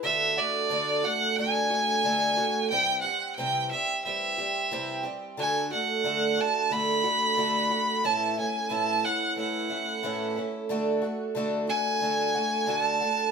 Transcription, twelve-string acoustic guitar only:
X:1
M:4/4
L:1/8
Q:1/4=90
K:Dlyd
V:1 name="Twelve-string acoustic guitar"
[D,A,DF] [A,DF] [D,A,DF] [A,DF] [D,A,DF] [A,DF] [D,A,DF] [A,DF] | [=C,E,=G,=C=G] [G,CG] [C,E,G,CG] [G,CG] [E,G,CG] [G,CG] [C,E,G,CG] [G,CG] | [D,A,DF] [A,DF] [D,A,DF] [A,DF] [D,A,DF] [A,DF] [D,A,DF] [A,DF] | [A,,E,A,CE] [A,CE] [A,,E,A,CE] [A,CE] [E,A,CE] [A,CE] [A,,E,A,CE] [A,CE] |
[D,A,DF] [A,DF] [D,A,DF] [A,DF] [D,A,DF] [A,DF] [D,A,DF] [A,DF] |]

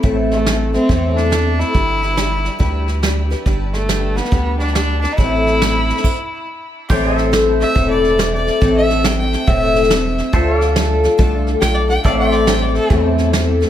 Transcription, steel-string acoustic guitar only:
X:1
M:4/4
L:1/8
Q:"Swing" 1/4=140
K:Am
V:1 name="Steel-string acoustic guitar"
[A,,E,A,CEA]2 [A,CEA] [A,CEA] [A,,E,A,CEA]2 [A,CEA]2 | [G,DGB]2 [G,DGB]2 [G,DGB]2 [G,DGB] [DGB] | [G,DGB]2 [G,DGB] [DGB] [G,DGB]2 [G,DGB] [DGB] | [A,,E,A,CEA]2 [A,CEA]2 z4 |
[A,,E,A,CEA]2 [A,CEA]2 [A,,E,A,CEA]2 [A,CEA]2 | [A,,E,A,CEA]2 [A,CEA]2 [A,,E,A,CEA]2 [A,CEA]2 | [D,A,DFA]2 [A,DFA] [DFA] [D,A,DFA]2 [A,DFA] [DFA] | [A,,E,A,CEA]2 [A,CEA]2 [A,,E,A,CEA]2 [A,CEA] [A,CEA] |]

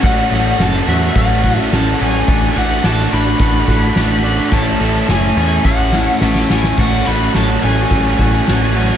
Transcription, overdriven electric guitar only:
X:1
M:4/4
L:1/8
Q:1/4=107
K:F#m
V:1 name="Overdriven electric guitar"
[A,CFA] [A,CFA] [A,CFA] [A,CFA] [A,CFA] [A,CFA] [A,CFA] [A,CFA] | [A,DFA] [A,DFA] [A,DFA] [A,DFA] [A,DFA] [A,DFA] [A,DFA] [A,DFA] | [A,CEA] [A,CEA] [A,CEA] [A,CEA] [A,CEA] [A,CEA] [A,CEA] [A,CEA] | [A,CFA] [A,CFA] [A,CFA] [A,CFA] [A,CFA] [A,CFA] [A,CFA] [A,CFA] |]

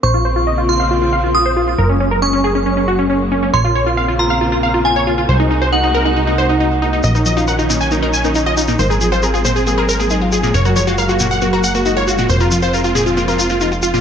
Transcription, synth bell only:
X:1
M:4/4
L:1/8
Q:1/4=137
K:Bbm
V:1 name="Synth bell"
d'3 c'3 e'2- | e'2 d'6 | c'3 b3 a2- | a2 g6 |
z8 | z8 | z8 | z8 |]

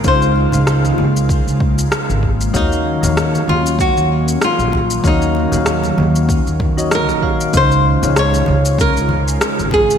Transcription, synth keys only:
X:1
M:4/4
L:1/16
Q:"Swing 16ths" 1/4=96
K:Db
V:1 name="Synth keys"
[D,A,Ecf]3 [D,A,Ecf]12- [D,A,Ecf] | [E,B,Gdf]3 [E,G,B,df]12- [E,G,B,df] | [E,B,Gdf]3 [E,B,Gdf]8 [E,B,Gde]3 [E,B,Gdf] z | [D,A,Ecf]3 [D,A,Edf]12- [D,A,Edf] |]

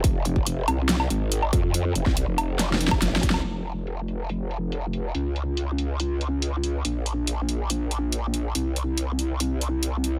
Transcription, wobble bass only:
X:1
M:4/4
L:1/16
Q:1/4=141
K:Fm
V:1 name="Wobble bass" clef=bass
F,,,6 C,,4 A,,,4 F,,2- | F,,2 F,,, C,,2 F,,,6 F,,, A,,,3 C,, | F,,,16 | D,,16 |
B,,,16 | C,,16 |]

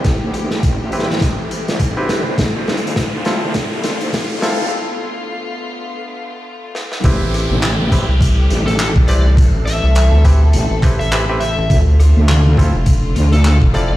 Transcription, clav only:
X:1
M:4/4
L:1/16
Q:"Swing 16ths" 1/4=103
K:Am
V:1 name="Clav"
z6 [CEGB] z6 [CEGB]2 z | z6 [CEFA] z6 z [CEFA] z | z16 | [CEGB]6 [CEGB] z6 z [CEGB] z |
z6 [CEGB] z3 [CEGB] z [CEGB] [CEGB] z2 | z6 [CEFA] z6 z [CEFA] z |]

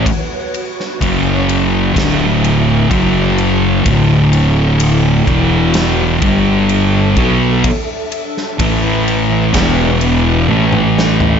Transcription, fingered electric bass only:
X:1
M:4/4
L:1/8
Q:1/4=63
K:D
V:1 name="Fingered electric bass" clef=bass
z2 F,,,2 D,,,2 F,,,2 | D,,,3 E,,,2 G,,,2 B,,, | z2 A,,,2 E,,,2 A,,,2 |]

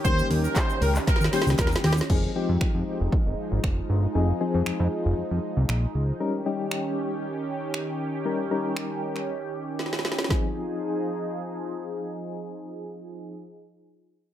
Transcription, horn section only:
X:1
M:4/4
L:1/16
Q:1/4=117
K:Fm
V:1 name="Horn section"
c2 z B c2 B z B2 c z B z G z | z16 | z16 | z16 |
z16 | z16 | z16 |]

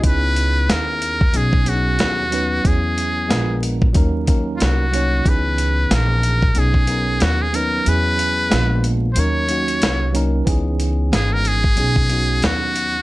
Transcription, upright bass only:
X:1
M:4/4
L:1/8
Q:"Swing 16ths" 1/4=92
K:C#dor
V:1 name="Upright bass" clef=bass
C,,2 D,,2 B,,,2 D,,2 | E,,2 A,,,2 D,,2 ^B,,,2 | C,,2 A,,,2 B,,,2 D,,2 | E,,2 A,,,2 D,,2 ^B,,,2 |
C,,2 G,,,2 B,,,2 D,,2 |]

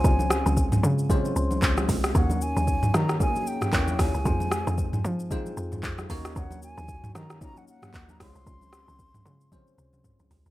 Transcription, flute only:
X:1
M:4/4
L:1/16
Q:"Swing 16ths" 1/4=114
K:Db
V:1 name="Flute"
a6 z8 z2 | g2 a4 b2 a2 =g4 a2- | a6 z8 z2 | g2 a4 b2 b g g3 b c'2- |
c'12 z4 |]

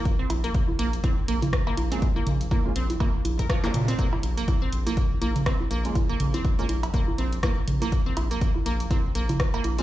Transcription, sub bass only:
X:1
M:4/4
L:1/8
Q:"Swing 16ths" 1/4=122
K:Bbm
V:1 name="Sub bass" clef=bass
z B,,, z B,,, z B,,, z B,,, | z B,,, z B,,, z B,,, z B,, | z B,,, z B,,, z B,,, z B,,, | z B,,, z B,,, z B,,, z B,,, |
z B,,, z B,,, z B,,, z B,,, |]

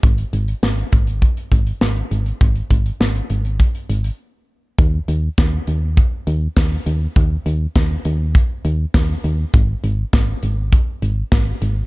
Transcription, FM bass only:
X:1
M:4/4
L:1/16
Q:1/4=101
K:Abdor
V:1 name="FM bass" clef=bass
A,,,2 A,,,2 A,,,2 A,,,3 z A,,,2 A,,,2 A,,,2 | A,,,2 A,,,2 A,,,2 A,,,3 z A,,,2 z4 | E,,2 E,,2 E,,2 E,,3 z E,,2 E,,2 E,,2 | E,,2 E,,2 E,,2 E,,3 z E,,2 E,,2 E,,2 |
A,,,2 A,,,2 A,,,2 A,,,3 z A,,,2 A,,,2 A,,,2 |]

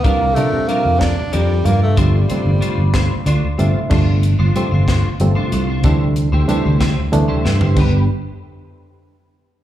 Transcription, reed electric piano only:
X:1
M:6/8
L:1/8
Q:3/8=62
K:Ddor
V:1 name="Reed electric piano" clef=bass
[C,F,G,_B,D] [_B,,C,F,G,D]3 z [C,F,G,B,F] | [C,F,G,A,D] [C,F,G,A,C]3 d [C,F,G,A,Ce] | [C,F,G,A,D] z [C,F,G,A,C] z [C,F,G,A,C] z | [C,E,G,A,D] z [C,E,G,A,D] z [C,E,G,A,D] z |
[D,G,B,DG] z4 z |]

